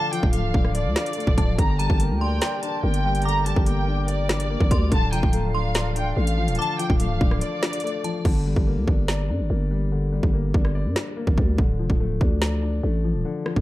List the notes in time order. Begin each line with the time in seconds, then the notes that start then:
Already playing: D3 F3 A3 D4 F4 D5 F5 D6
0.13 F3 G5, closed hi-hat
0.23 D1, kick
0.33 A3 F5, closed hi-hat
0.44 C1
0.54 D1 D4, kick
0.65 cross-stick
0.75 D5, closed hi-hat
0.85 D2
0.96 D4, snare
1.06 closed hi-hat
1.13 A3, closed hi-hat
1.20 closed hi-hat
1.27 D1, kick
1.37 D1 F3 A5, kick, closed hi-hat
1.58 G1 D3 G4 A#4 G5 A#5, kick, closed hi-hat
1.79 G3 A5 A#5, closed hi-hat
1.90 G1, kick
2.00 A#3, closed hi-hat
2.10 D2
2.21 D4 G5 C6
2.41 D5, snare, closed hi-hat
2.62 D4 A5, closed hi-hat
2.83 G1 A#3 G5
2.94 closed hi-hat
3.04 G3
3.15 closed hi-hat
3.22 D3 A#5 D6, closed hi-hat
3.29 closed hi-hat
3.46 G3 A5, closed hi-hat
3.56 G1, kick
3.66 A#3 G5, closed hi-hat
3.88 D4
4.08 D5, closed hi-hat
4.29 D4, snare
4.40 closed hi-hat
4.50 A#3
4.60 G1, kick
4.71 D2 G3 C6, kick, closed hi-hat
4.92 D1 D3 D4 F4 F5 A5, kick, closed hi-hat
5.12 F1 F3 G5 A#5, closed hi-hat
5.23 D1, kick
5.33 A3, closed hi-hat
5.54 D4 F5 C6
5.75 D5, snare, closed hi-hat
5.96 D4 G5, closed hi-hat
6.17 A1 A3 F5
6.27 closed hi-hat
6.38 F3
6.48 D#1, closed hi-hat
6.55 D3 A5 D6, closed hi-hat
6.62 closed hi-hat
6.79 F3 G5, closed hi-hat
6.90 D1, kick
7.00 A3 F5, closed hi-hat
7.10 C1
7.21 D1 D4, kick
7.31 cross-stick
7.41 D5, closed hi-hat
7.63 D4, snare
7.73 closed hi-hat
7.80 A3, closed hi-hat
7.87 closed hi-hat
8.04 F3 A5, closed hi-hat
8.25 G1 D3, kick, crash
8.46 G3
8.56 G1, kick
8.67 A#3
8.77 D2
8.88 G1 D4, kick
9.08 D5, snare
9.29 G2 D4
9.40 G1
9.50 G1 A#3
9.71 G3
9.92 D3
10.12 G3
10.23 G1, kick
10.33 A#3
10.54 G1 D4, kick
10.65 cross-stick
10.75 D5
10.86 G2
10.96 D4, snare
11.17 A#3
11.27 G1, kick
11.38 D2 G3, kick
11.58 D1 D3, kick
11.79 F1 F3
11.90 D1, kick
12.00 A3
12.21 D2 D4, kick
12.42 D5, snare
12.62 D4
12.83 A1 A3
13.04 F3
13.15 D#1
13.25 D3
13.46 F3, cross-stick
13.56 D1, kick